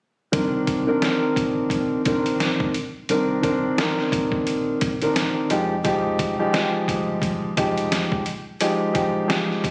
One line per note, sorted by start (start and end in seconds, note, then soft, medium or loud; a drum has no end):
0.32 0.90 C2 loud
0.32 0.82 D#3 medium
0.32 0.82 C4 medium
0.32 0.83 D4 medium
0.32 0.83 A#4 medium
0.32 kick loud
0.32 closed hi-hat loud
0.67 kick medium
0.67 closed hi-hat medium
0.87 1.01 D#3 medium
0.87 1.01 C4 medium
0.87 1.02 D4 medium
0.87 1.02 A#4 loud
1.02 1.99 D#3 medium
1.02 1.99 C4 medium
1.02 1.99 D4 medium
1.02 1.99 A#4 loud
1.02 snare loud
1.02 closed hi-hat medium
1.36 1.93 A#1 medium
1.36 kick medium
1.36 closed hi-hat medium
1.70 kick medium
1.70 closed hi-hat medium
2.05 2.50 A#1 medium
2.05 2.70 D#3 loud
2.05 2.70 C4 medium
2.05 2.70 D4 medium
2.05 2.71 A#4 medium
2.05 kick loud
2.05 closed hi-hat medium
2.26 closed hi-hat medium
2.40 snare medium
2.40 closed hi-hat loud
2.60 kick medium
2.74 closed hi-hat medium
3.09 3.66 C2 loud
3.09 3.41 D#3 medium
3.09 3.41 C4 medium
3.09 3.41 D4 medium
3.09 3.42 A#4 loud
3.09 closed hi-hat loud
3.42 3.75 D#3 medium
3.42 3.75 C4 medium
3.42 3.75 D4 medium
3.42 3.75 A#4 medium
3.42 kick medium
3.42 closed hi-hat medium
3.78 4.90 D#3 loud
3.78 4.90 C4 medium
3.78 4.91 D4 medium
3.78 4.91 A#4 loud
3.78 snare loud
3.78 closed hi-hat medium
3.98 snare soft
4.12 4.69 A#1 medium
4.12 kick medium
4.12 closed hi-hat medium
4.32 kick medium
4.47 closed hi-hat medium
4.81 5.26 A#1 medium
4.81 kick loud
4.81 closed hi-hat medium
5.02 5.51 D#3 medium
5.02 5.51 C4 medium
5.02 5.51 D4 medium
5.02 5.51 A#4 loud
5.02 closed hi-hat medium
5.16 snare medium
5.16 closed hi-hat loud
5.50 6.35 F1 medium
5.50 5.73 F3 medium
5.50 5.73 G#3 medium
5.50 5.73 D#4 medium
5.50 5.73 G4 loud
5.50 closed hi-hat medium
5.84 6.34 F3 loud
5.84 6.34 G#3 medium
5.84 6.34 D#4 medium
5.84 6.35 G4 loud
5.84 kick loud
5.84 closed hi-hat loud
6.19 kick medium
6.19 closed hi-hat medium
6.39 6.52 F3 medium
6.39 6.52 G#3 medium
6.39 6.52 D#4 medium
6.39 6.52 G4 loud
6.53 7.50 F3 medium
6.53 7.50 G#3 medium
6.53 7.50 D#4 medium
6.53 7.50 G4 loud
6.53 snare loud
6.53 closed hi-hat medium
6.88 7.45 G1 medium
6.88 kick medium
6.88 closed hi-hat medium
7.22 kick medium
7.22 closed hi-hat medium
7.57 8.02 F1 medium
7.57 8.21 F3 medium
7.57 8.21 G#3 medium
7.57 8.22 D#4 medium
7.57 8.22 G4 loud
7.57 kick loud
7.57 closed hi-hat medium
7.78 closed hi-hat medium
7.92 snare medium
7.92 closed hi-hat loud
8.12 kick medium
8.26 closed hi-hat medium
8.60 8.92 F3 medium
8.60 8.92 G#3 medium
8.60 8.93 D#4 medium
8.60 8.93 G4 loud
8.60 closed hi-hat loud
8.94 9.26 F3 medium
8.94 9.26 G#3 medium
8.94 9.27 D#4 medium
8.94 9.27 G4 loud
8.94 kick medium
8.94 closed hi-hat medium
9.28 9.71 F3 medium
9.28 9.71 G#3 medium
9.28 9.71 D#4 medium
9.28 9.71 G4 loud
9.28 snare loud
9.28 closed hi-hat medium
9.50 snare soft
9.64 kick medium
9.64 closed hi-hat medium